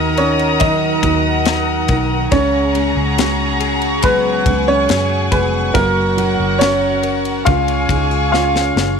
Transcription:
0.00 0.99 D#2 medium
0.00 0.61 D#3 medium
0.00 2.32 D#3 medium
0.00 0.61 F#3 medium
0.00 0.14 A#3 medium
0.00 1.46 D#4 medium
0.00 1.03 F#4 medium
0.00 0.19 A#4 medium
0.00 2.27 A#4 medium
0.00 2.29 A#4 medium
0.00 2.27 D#5 medium
0.00 7.43 F#5 medium
0.00 2.27 A#5 medium
0.00 2.29 D#6 medium
0.17 0.58 C#4 medium
0.17 1.88 A#4 medium
0.17 0.62 C#5 medium
0.17 ride medium
0.39 ride soft
0.60 1.01 D#3 medium
0.60 3.63 F#3 medium
0.60 1.86 D#4 medium
0.60 1.85 D#5 medium
0.60 kick loud
0.60 ride medium
1.03 1.85 D#2 loud
1.03 1.88 D#3 medium
1.03 3.17 F#4 medium
1.03 kick medium
1.03 ride medium
1.45 2.41 D#4 medium
1.45 snare loud
1.45 ride medium
1.88 2.29 B1 medium
1.88 2.31 D#3 medium
1.88 2.40 A#4 medium
1.88 kick medium
1.88 ride medium
2.31 2.92 C#2 loud
2.31 5.75 C#3 medium
2.31 3.17 C#3 medium
2.31 4.00 C#4 medium
2.31 4.42 G#4 medium
2.31 5.72 G#4 medium
2.31 4.08 C#5 medium
2.31 5.71 C#5 medium
2.31 4.42 A#5 medium
2.31 7.43 C#6 medium
2.31 kick loud
2.31 ride medium
2.75 4.03 G#3 medium
2.75 4.88 C#4 medium
2.75 ride medium
2.96 4.42 C#2 loud
3.18 4.46 C#3 medium
3.18 4.46 F#4 medium
3.18 snare loud
3.18 ride medium
3.60 5.30 G#4 medium
3.60 ride medium
3.82 ride soft
4.02 5.74 F#3 medium
4.02 5.31 G#3 medium
4.02 4.65 B3 medium
4.02 4.70 B4 medium
4.02 kick loud
4.02 ride medium
4.45 4.86 C#2 loud
4.45 5.71 C#3 medium
4.45 5.83 F#4 medium
4.45 5.72 G#4 medium
4.45 5.71 G#5 medium
4.45 kick medium
4.45 ride medium
4.68 5.28 C#4 medium
4.68 5.34 C#5 loud
4.88 5.29 F#2 loud
4.88 6.18 C#4 medium
4.88 snare loud
4.88 ride medium
5.32 5.72 F1 medium
5.32 5.74 G#3 medium
5.32 5.72 B3 medium
5.32 5.83 G#4 medium
5.32 5.76 B4 medium
5.32 kick medium
5.32 ride medium
5.74 6.35 F#1 loud
5.74 6.16 F#3 medium
5.74 7.55 F#3 medium
5.74 6.57 A#3 medium
5.74 7.43 F#4 medium
5.74 6.63 A#4 medium
5.74 7.45 A#4 medium
5.74 9.00 C#5 medium
5.74 7.43 F#5 medium
5.74 kick loud
5.74 ride medium
6.17 6.58 F#3 medium
6.17 7.55 C#4 medium
6.17 ride medium
6.40 7.43 F#1 medium
6.59 7.43 F#3 medium
6.59 7.42 C#4 medium
6.59 7.55 F#4 medium
6.59 7.48 C#5 loud
6.59 snare loud
6.59 ride medium
7.03 7.55 A#4 medium
7.03 ride medium
7.25 ride soft
7.45 7.87 C#2 loud
7.45 9.00 C#3 medium
7.45 8.28 F4 medium
7.45 9.00 G#4 medium
7.45 8.31 F5 loud
7.45 9.00 F5 medium
7.45 9.00 G#5 medium
7.45 9.00 C#6 medium
7.45 kick loud
7.45 ride medium
7.68 ride soft
7.89 8.71 C#2 loud
7.89 9.00 G#3 medium
7.89 8.11 D#4 medium
7.89 kick medium
7.89 ride medium
8.11 9.00 F4 medium
8.32 9.00 C#4 soft
8.32 9.00 C#4 medium
8.32 8.93 F4 medium
8.32 8.92 F5 medium
8.32 snare medium
8.56 snare medium
8.76 9.00 F#1 medium
8.76 9.00 G#4 medium
8.76 snare medium

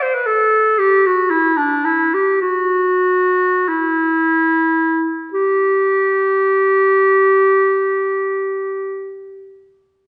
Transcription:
0.02 0.16 C5 soft
0.14 0.28 B4 medium
0.26 0.80 A4 medium
0.79 1.08 G4 medium
1.06 1.32 F#4 medium
1.30 1.59 E4 medium
1.57 1.86 D4 medium
1.85 2.16 E4 medium
2.14 2.41 G4 medium
2.41 3.70 F#4 medium
3.68 5.17 E4 medium
5.34 9.32 G4 medium

